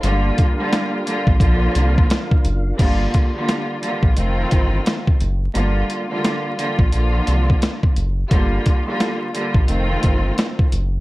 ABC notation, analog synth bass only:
X:1
M:4/4
L:1/16
Q:"Swing 16ths" 1/4=87
K:Gm
V:1 name="Analog synth bass" clef=bass
G,,,2 z4 z B,,, B,,,2 C,,2 z2 ^F,,,2 | G,,,2 z4 z B,,, F,,,2 G,,,2 z2 ^F,,,2 | G,,,2 z4 z B,,, B,,,2 C,,2 z2 ^F,,,2 | G,,,2 z4 z B,,, F,,,2 G,,,2 z2 ^F,,,2 |]